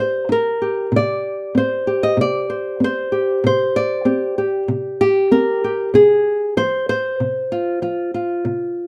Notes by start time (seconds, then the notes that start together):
Already playing: C3 G4 D5
0.00 C5
0.29 D#4 A#4
0.62 G4
0.92 C3
0.96 D5
1.55 C4 C5
1.87 G4
2.03 D#5
2.17 C3
2.21 D5
2.50 C5
2.80 C4
2.84 C5
3.12 G4
3.44 C3 C5
3.76 D5
4.05 C4 G4
4.38 G4
4.68 C3
5.01 G4
5.31 C4 A#4
5.64 G4
5.94 C3 G#4
6.57 F3 C5
6.89 C5
7.20 C3
7.52 F4
7.82 F3 F4
8.14 F4
8.45 C3